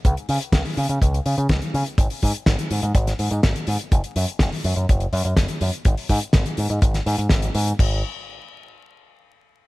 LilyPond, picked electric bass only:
\new Staff \with { instrumentName = "Picked electric bass" } { \clef bass \time 4/4 \key cis \dorian \tempo 4 = 124 cis,16 r16 cis16 r16 cis,16 r16 cis16 cis16 cis,16 r16 cis16 cis16 cis,16 r16 cis16 r16 | gis,,16 r16 gis,16 r16 gis,,16 r16 gis,16 gis,16 gis,,16 r16 gis,16 gis,16 gis,,16 r16 gis,16 r16 | fis,,16 r16 fis,16 r16 fis,,16 r16 fis,16 fis,16 fis,,16 r16 fis,16 fis,16 fis,,16 r16 fis,16 r16 | gis,,16 r16 gis,16 r16 gis,,16 r16 gis,16 gis,16 gis,,16 r16 gis,16 gis,16 gis,,16 r16 gis,16 r16 |
gis,,8 r2. r8 | }